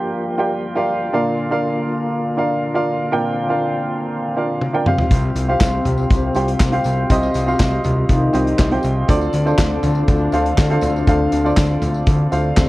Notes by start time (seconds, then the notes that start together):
Already playing: G2 F3 A#3 F4 G4 A#4 D5 F5 G5
0.38 F4 G4 A#4 D5 G5
0.76 F4 G4 A#4 D5 F5
1.13 A#2 D3 A#3 D4 F4 A#4 D5 F5
1.51 D4 F4 A#4 D5 F5
2.37 D4 F4 A#4 D5 F5
2.74 D4 F4 A#4 D5 F5
3.12 A#2 C4 D4 F4 A#4 D5 G5
3.49 D4 F4 A#4 D5 F5
4.36 D4 F4 A#4 D5 F5
4.61 high tom
4.73 D4 F4 A#4 D5 G5
4.86 C3 G3 C4 F4 G4 C5 F5, mid tom
4.99 floor tom
5.11 C2 C3 C4, kick, closed hi-hat, tambourine
5.36 C2, closed hi-hat, tambourine
5.48 C4 F4 G4 C5 F5
5.61 C2, kick, snare, clap, closed hi-hat, tambourine
5.85 C2, closed hi-hat, floor tom, tambourine
5.97 tambourine
6.10 C2, kick, closed hi-hat, tambourine
6.34 C2 C4 F4 G4 C5 G5, closed hi-hat, tambourine
6.48 closed hi-hat
6.60 C2, kick, snare, clap, closed hi-hat, tambourine
6.72 C4 F4 G4 C5 F5, closed hi-hat
6.84 C2 C3, closed hi-hat, tambourine
7.10 C2 C4 F4 G4 C5 D#5, kick, closed hi-hat, tambourine
7.23 tambourine
7.34 C2, closed hi-hat, tambourine
7.46 C4 F4 F#4 C5 F5, tambourine
7.53 G4
7.59 C2, kick, snare, clap, closed hi-hat, tambourine
7.84 C2, closed hi-hat, floor tom, tambourine
8.09 C2 D#3 D#4, kick, closed hi-hat, tambourine
8.33 C2 C4 F4 G4 C5 D#5, closed hi-hat, tambourine
8.47 closed hi-hat
8.59 C2, kick, snare, clap, closed hi-hat, tambourine
8.71 C4 F4 G4 C5 G5, closed hi-hat
8.83 C2, closed hi-hat, tambourine
9.08 D2 D3 C4 D4 F4 A4 C5 D5, kick, closed hi-hat, tambourine
9.21 tambourine
9.33 D2, closed hi-hat, tambourine
9.46 D4 F4 A4 C5 D5, tambourine
9.58 D2, kick, snare, clap, closed hi-hat, tambourine
9.83 D2, closed hi-hat, floor tom, tambourine
9.95 tambourine
10.08 D2, kick, closed hi-hat, tambourine
10.32 D2 D4 F4 A4 C5 F5, closed hi-hat, tambourine
10.46 closed hi-hat
10.58 D2, kick, snare, clap, closed hi-hat, tambourine
10.70 D4 F4 A4 C5 F5, closed hi-hat
10.81 D2, closed hi-hat, floor tom, tambourine
10.96 tambourine
11.07 D2 D3 D4 F4 A4 C5 F5, kick, closed hi-hat, tambourine
11.32 D2, closed hi-hat, tambourine
11.44 D4 F4 A4 C5 D5, tambourine
11.57 D2, kick, snare, clap, closed hi-hat, tambourine
11.82 D2, closed hi-hat, floor tom, tambourine
11.94 tambourine
12.06 D2, kick, closed hi-hat, tambourine
12.31 D2 D4 F4 A4 C5 F5, closed hi-hat, tambourine
12.57 D2 C3 C4, kick, snare, clap, closed hi-hat, tambourine